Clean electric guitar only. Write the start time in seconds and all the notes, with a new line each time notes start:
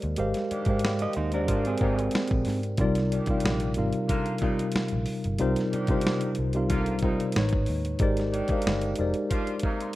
1.02 G4 D#5
1.17 D#4 C5
1.34 D4 A#4
1.67 C4 G#4